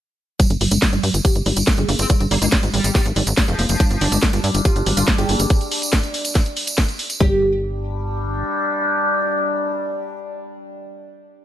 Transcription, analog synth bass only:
0.50 G1
0.61 G1
0.72 G1
0.93 G1
1.03 G2
1.14 G1
1.35 G1
1.46 G#1
1.57 G1
1.78 G1
1.89 G1
1.99 G1
2.21 G1
2.31 G1
2.42 G1
2.63 G#1
2.74 G#1
2.84 G#1
3.06 G#1
3.16 G#1
3.27 G#1
3.48 F1
3.59 F1
3.69 F1
3.91 G1
4.01 G1
4.12 G1
4.33 G1
4.44 G2
4.55 G1
4.76 G1
4.86 G#1
4.97 G1
5.18 G1
5.29 G1
5.40 G1
7.20 G1

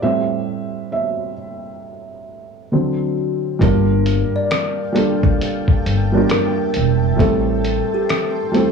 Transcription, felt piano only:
0.02 A2 G3 C4 E5
0.92 E5
2.72 D3 F#3 C4
3.59 G3 A#3 D4 F4
3.64 A#4
4.93 G3 A#3 D4 F4
4.97 A4
6.12 G3 A#3 D4 F4
6.17 A#4
7.16 G3 A3 C4
7.20 E4 A4
8.51 G3 A3 C4 E4
8.57 A4

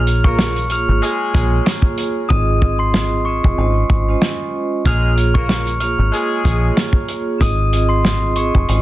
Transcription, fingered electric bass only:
Already playing: A#1
0.88 G#1
1.35 A#1
2.30 G#1
3.44 F1
3.58 G#1
3.90 G#1
4.86 A#1
5.99 G#1
6.45 A#1
7.41 G#1
8.55 F1
8.69 G#1

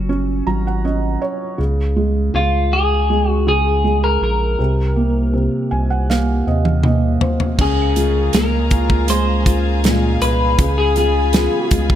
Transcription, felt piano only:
Already playing: F#3 C#4
0.09 C#4
0.47 F#3 A#5
0.67 F#5
0.85 C#4 D#5
1.22 C#5
1.58 C#3
1.96 G#3
2.34 C#3
3.10 G#3
3.47 C#3
3.84 G#3
4.59 C3
4.96 A#3
5.33 C3
5.71 G#5
5.90 F#5
6.10 A#3 F5
6.47 C3 D#5
6.65 F5
6.85 A#3 D#5
7.22 C5
7.59 C#4
7.97 G#3
8.34 A#3
8.71 F4
9.09 G#3
9.85 A#2
10.59 C#3
10.97 G#3
11.34 F4
11.71 G#3

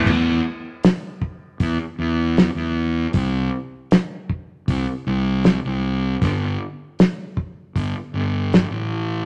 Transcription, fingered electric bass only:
0.07 E2
1.60 E2
1.99 E2
2.55 E2
3.14 C2
4.68 C2
5.07 C2
5.65 C2
6.22 G1
7.75 G1
8.14 G1
8.71 A1

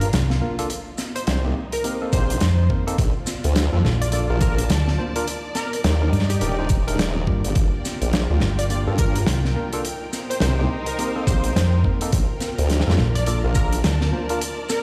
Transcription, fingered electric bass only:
0.13 C2
2.42 F2
3.85 A#1
4.70 D2
6.13 G2
7.27 G2
8.42 G1
9.27 C2
11.56 F2
12.99 A#1
13.85 D2

